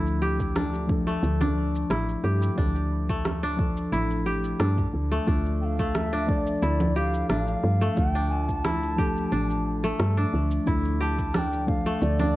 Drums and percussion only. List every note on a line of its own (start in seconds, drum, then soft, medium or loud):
0.06 shaker soft
0.40 kick medium
0.40 shaker medium
0.56 cross-stick loud
0.56 low conga medium
0.56 shaker medium
0.74 shaker soft
0.89 kick loud
1.07 shaker medium
1.23 shaker medium
1.41 low conga medium
1.41 shaker soft
1.75 shaker medium
1.90 cross-stick loud
1.90 shaker medium
2.09 shaker soft
2.42 shaker medium
2.58 kick loud
2.58 shaker medium
2.76 shaker soft
3.09 kick medium
3.09 shaker medium
3.25 cross-stick loud
3.25 low conga medium
3.25 shaker medium
3.43 shaker soft
3.59 kick loud
3.77 shaker medium
3.93 shaker soft
4.11 shaker soft
4.44 shaker medium
4.60 cross-stick loud
4.60 shaker medium
4.78 kick medium
4.78 shaker soft
5.12 shaker medium
5.27 kick loud
5.27 shaker medium
5.46 shaker soft
5.79 kick medium
5.79 shaker medium
5.95 cross-stick loud
5.95 low conga medium
5.95 shaker medium
6.13 shaker soft
6.29 kick loud
6.47 shaker medium
6.62 shaker medium
6.80 low conga medium
6.80 shaker soft
7.14 shaker medium
7.30 cross-stick loud
7.30 shaker medium
7.48 shaker soft
7.81 shaker medium
7.97 kick loud
7.97 shaker medium
8.16 shaker soft
8.49 kick medium
8.49 shaker medium
8.65 cross-stick loud
8.65 low conga medium
8.65 shaker medium
8.83 shaker soft
8.98 kick loud
9.17 shaker medium
9.32 shaker medium
9.50 shaker soft
9.84 shaker medium
10.00 cross-stick loud
10.00 shaker medium
10.18 shaker soft
10.51 shaker medium
10.67 kick loud
10.67 shaker medium
10.85 shaker soft
11.19 kick medium
11.19 shaker medium
11.34 cross-stick loud
11.34 low conga medium
11.34 shaker medium
11.53 shaker soft
11.68 kick loud
11.86 shaker medium
12.02 shaker medium
12.20 low conga medium
12.20 shaker soft